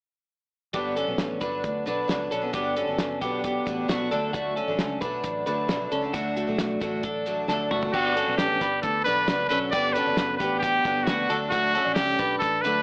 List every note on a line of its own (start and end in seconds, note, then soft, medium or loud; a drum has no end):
0.73 1.03 G1 medium
0.73 1.07 G2 medium
0.73 1.08 D3 medium
0.73 1.08 F#3 medium
0.73 1.07 B3 medium
0.73 0.97 B3 medium
0.73 1.05 D4 medium
0.73 0.96 G4 loud
0.73 kick loud
0.73 closed hi-hat medium
0.96 1.39 C#4 medium
0.96 1.39 A4 medium
0.96 closed hi-hat medium
1.07 1.18 B1 medium
1.07 1.40 F#3 soft
1.07 1.41 B3 soft
1.07 1.41 D4 medium
1.18 1.38 A1 medium
1.18 snare loud
1.18 closed hi-hat medium
1.40 1.61 G1 medium
1.40 1.85 D3 medium
1.40 1.87 F#3 medium
1.40 1.87 B3 medium
1.40 1.84 D4 medium
1.40 1.88 D4 medium
1.40 1.84 B4 medium
1.40 kick medium
1.40 closed hi-hat medium
1.64 1.83 D2 medium
1.64 kick medium
1.64 closed hi-hat medium
1.86 2.06 B1 medium
1.86 2.06 D3 medium
1.86 2.08 F#3 medium
1.86 2.08 B3 medium
1.86 2.29 D4 medium
1.86 2.09 D4 medium
1.86 2.29 B4 medium
1.86 closed hi-hat medium
2.08 2.28 C#2 medium
2.08 2.42 D3 medium
2.08 2.43 F#3 medium
2.08 2.42 B3 medium
2.08 2.40 D4 medium
2.08 snare loud
2.08 closed hi-hat medium
2.31 2.51 B1 medium
2.31 2.54 C#4 medium
2.31 2.53 A4 medium
2.31 closed hi-hat medium
2.42 2.52 F#3 soft
2.42 2.53 B3 soft
2.42 2.53 D4 medium
2.53 2.83 G1 loud
2.53 2.87 G2 medium
2.53 2.87 D3 medium
2.53 2.88 F#3 medium
2.53 2.77 B3 medium
2.53 2.88 B3 medium
2.53 2.86 D4 medium
2.53 2.76 G4 medium
2.53 kick loud
2.53 closed hi-hat medium
2.77 3.19 C#4 medium
2.77 3.19 A4 medium
2.77 closed hi-hat medium
2.87 2.98 G1 medium
2.87 3.21 F#3 soft
2.87 3.22 B3 medium
2.87 3.21 D4 medium
2.98 3.19 F#1 medium
2.98 snare loud
2.98 closed hi-hat medium
3.21 3.60 B1 medium
3.21 3.65 D3 medium
3.21 3.66 F#3 medium
3.21 3.44 B3 medium
3.21 3.66 B3 medium
3.21 3.68 D4 medium
3.21 3.43 G4 medium
3.21 kick medium
3.21 closed hi-hat medium
3.44 3.87 B3 medium
3.44 3.86 G4 medium
3.44 kick medium
3.44 closed hi-hat medium
3.66 3.86 A1 medium
3.66 3.87 D3 medium
3.66 3.88 F#3 medium
3.66 3.89 B3 medium
3.66 3.90 D4 medium
3.66 kick medium
3.66 closed hi-hat medium
3.88 4.09 B1 medium
3.88 4.10 D3 medium
3.88 4.11 F#3 medium
3.88 4.12 B3 medium
3.88 4.12 D4 medium
3.88 4.11 F#4 medium
3.88 snare loud
3.88 closed hi-hat medium
4.11 4.60 D2 medium
4.11 5.01 D3 medium
4.11 4.70 F#3 medium
4.11 4.68 A3 medium
4.11 4.34 D4 medium
4.11 4.68 D4 medium
4.11 4.33 A4 medium
4.11 closed hi-hat medium
4.33 4.57 A3 medium
4.33 4.56 F#4 loud
4.33 kick loud
4.33 closed hi-hat medium
4.56 4.99 C#4 medium
4.56 4.99 A4 medium
4.56 closed hi-hat medium
4.68 4.78 A1 medium
4.68 5.01 F#3 soft
4.68 5.02 A3 medium
4.68 5.02 D4 medium
4.79 4.99 C#2 medium
4.79 snare loud
4.79 closed hi-hat medium
5.01 5.21 B1 medium
5.01 5.46 D3 medium
5.01 5.47 F#3 medium
5.01 5.47 A3 medium
5.01 5.44 D4 medium
5.01 5.49 D4 medium
5.01 5.44 B4 medium
5.01 kick medium
5.01 closed hi-hat medium
5.24 5.43 A1 medium
5.24 kick medium
5.24 closed hi-hat medium
5.46 5.66 D2 medium
5.46 5.67 D3 medium
5.46 5.68 F#3 medium
5.46 5.69 A3 medium
5.46 5.89 D4 medium
5.46 5.70 D4 medium
5.46 5.89 B4 medium
5.46 closed hi-hat medium
5.68 5.88 B1 medium
5.68 6.02 D3 medium
5.68 6.03 F#3 medium
5.68 6.03 A3 medium
5.68 6.01 D4 medium
5.68 snare loud
5.68 closed hi-hat medium
5.92 6.11 C#2 medium
5.92 6.15 C#4 medium
5.92 6.14 A4 medium
5.92 closed hi-hat medium
6.02 6.13 F#3 soft
6.02 6.15 A3 soft
6.02 6.14 D4 medium
6.13 6.43 D2 loud
6.13 6.48 D3 medium
6.13 6.48 F#3 medium
6.13 6.36 A3 medium
6.13 6.47 A3 medium
6.13 6.46 D4 medium
6.13 6.35 F#4 loud
6.13 kick medium
6.13 closed hi-hat loud
6.37 6.79 A3 medium
6.37 6.79 F#4 medium
6.37 closed hi-hat medium
6.47 6.57 B1 medium
6.47 6.80 F#3 soft
6.47 6.81 A3 medium
6.47 6.81 D4 medium
6.58 6.78 B1 medium
6.58 snare loud
6.58 closed hi-hat medium
6.80 7.46 A1 medium
6.80 7.25 D3 medium
6.80 7.26 F#3 medium
6.80 7.04 A3 medium
6.80 7.26 A3 medium
6.80 7.28 D4 medium
6.80 7.04 F#4 medium
6.80 kick medium
6.80 closed hi-hat medium
7.03 7.47 D4 medium
7.03 7.46 A4 medium
7.03 kick medium
7.03 closed hi-hat medium
7.26 7.47 D3 medium
7.26 7.48 F#3 medium
7.26 7.48 A3 medium
7.26 7.49 D4 medium
7.26 closed hi-hat medium
7.48 7.68 D2 medium
7.48 7.82 D3 medium
7.48 7.83 F#3 medium
7.48 7.82 A3 medium
7.48 7.72 D4 medium
7.48 7.81 D4 medium
7.48 7.71 A4 medium
7.48 snare medium
7.71 7.91 F#1 medium
7.71 7.94 A3 medium
7.71 7.93 F#4 medium
7.71 mid tom medium
7.82 7.93 F#3 soft
7.82 7.94 A3 soft
7.82 7.93 D4 medium
7.82 floor tom medium
7.92 8.22 G1 loud
7.92 8.16 G2 medium
7.92 8.14 D3 medium
7.92 8.15 F#3 medium
7.92 8.16 B3 medium
7.92 8.17 D4 medium
7.92 8.35 F#4 loud
7.92 8.16 G4 loud
7.92 kick loud
7.92 crash medium
8.15 8.27 D3 medium
8.15 8.28 F#3 medium
8.15 8.27 B3 medium
8.15 8.59 C#4 medium
8.15 8.25 D4 medium
8.15 8.58 A4 medium
8.15 closed hi-hat medium
8.27 8.37 B1 medium
8.27 9.06 B3 soft
8.27 9.08 D4 medium
8.38 8.58 A1 medium
8.38 8.80 G4 loud
8.38 snare loud
8.38 closed hi-hat loud
8.61 8.80 G1 medium
8.61 9.04 D4 medium
8.61 9.03 B4 medium
8.61 kick medium
8.61 snare soft
8.61 closed hi-hat medium
8.82 9.03 D2 loud
8.82 9.04 A4 medium
8.82 kick medium
8.82 closed hi-hat medium
9.04 9.25 B1 medium
9.04 9.26 D3 medium
9.04 9.27 F#3 medium
9.04 9.28 B3 medium
9.04 9.49 D4 medium
9.04 9.29 D4 medium
9.04 9.47 B4 loud
9.04 9.48 B4 medium
9.04 closed hi-hat medium
9.28 9.48 C#2 medium
9.28 9.48 D3 medium
9.28 9.49 F#3 medium
9.28 9.50 B3 medium
9.28 9.51 D4 medium
9.28 snare loud
9.28 closed hi-hat medium
9.49 9.70 B1 medium
9.49 9.71 D3 medium
9.49 9.72 F#3 medium
9.49 9.72 B3 medium
9.49 9.74 C#4 medium
9.49 9.73 D4 medium
9.49 9.72 A4 medium
9.49 9.59 B4 loud
9.49 closed hi-hat medium
9.71 10.02 G1 loud
9.71 9.95 G2 medium
9.71 9.93 D3 medium
9.71 9.94 F#3 medium
9.71 9.95 B3 medium
9.71 9.96 B3 medium
9.71 9.96 D4 medium
9.71 9.95 G4 loud
9.71 9.95 D5 loud
9.71 kick loud
9.71 closed hi-hat loud
9.93 10.06 D3 medium
9.93 10.07 F#3 medium
9.93 10.06 B3 medium
9.93 10.38 C#4 medium
9.93 10.38 A4 medium
9.93 10.36 B4 loud
9.93 closed hi-hat medium
9.98 10.05 D4 medium
10.06 10.16 G1 medium
10.06 10.85 F#3 soft
10.06 10.85 B3 medium
10.06 10.87 D4 medium
10.17 10.37 F#1 medium
10.17 snare loud
10.17 closed hi-hat loud
10.37 10.79 A1 medium
10.37 10.62 B3 medium
10.37 10.61 G4 medium
10.37 10.58 B4 medium
10.37 kick medium
10.37 closed hi-hat medium
10.59 11.05 G4 loud
10.59 11.05 G4 medium
10.59 kick medium
10.59 closed hi-hat medium
10.63 11.05 B3 medium
10.84 11.04 G1 medium
10.84 11.05 D3 medium
10.84 11.06 F#3 medium
10.84 11.07 B3 medium
10.84 11.08 D4 medium
10.84 kick loud
10.84 closed hi-hat medium
11.04 11.28 D3 medium
11.04 11.29 F#3 medium
11.04 11.30 B3 medium
11.04 11.39 F#4 medium
11.04 11.29 F#4 medium
11.04 snare loud
11.04 closed hi-hat medium
11.08 11.27 D2 medium
11.08 11.30 B3 medium
11.08 11.31 D4 medium
11.29 11.78 D2 loud
11.29 11.50 D3 medium
11.29 11.51 F#3 medium
11.29 11.52 A3 medium
11.29 11.53 D4 medium
11.29 11.52 D4 medium
11.29 11.52 A4 medium
11.29 closed hi-hat medium
11.49 11.72 D3 medium
11.49 11.74 F#3 medium
11.49 11.75 A3 medium
11.49 11.74 A3 medium
11.49 11.92 F#4 loud
11.49 11.74 F#4 loud
11.49 kick loud
11.49 closed hi-hat loud
11.53 11.75 D4 medium
11.74 11.85 D3 medium
11.74 11.86 F#3 medium
11.74 11.85 A3 medium
11.74 12.17 C#4 medium
11.74 11.83 D4 medium
11.74 12.17 A4 medium
11.74 closed hi-hat medium
11.85 11.96 A1 medium
11.85 12.64 A3 medium
11.85 12.66 D4 medium
11.94 12.16 C#2 medium
11.94 12.37 G4 loud
11.94 snare loud
11.94 closed hi-hat loud
12.19 12.38 B1 medium
12.19 12.62 D4 medium
12.19 12.62 B4 medium
12.19 kick medium
12.19 closed hi-hat medium
12.39 12.61 A1 loud
12.39 12.63 A4 medium
12.39 kick medium
12.39 closed hi-hat medium
12.61 12.82 D2 medium
12.61 12.82 D3 medium
12.61 12.82 F#3 medium
12.61 12.82 D4 medium
12.61 12.82 B4 loud
12.61 12.82 B4 medium
12.61 closed hi-hat medium
12.66 12.82 A3 medium
12.66 12.82 D4 medium